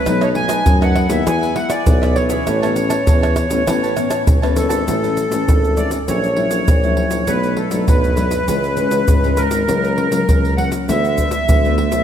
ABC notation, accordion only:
X:1
M:4/4
L:1/16
Q:1/4=100
K:A
V:1 name="Accordion"
B c g3 f2 e g2 f d3 c2- | c12 z2 A2- | A6 d2 c8 | B2 A2 B8- B2 _B2- |
_B6 f2 e8 |]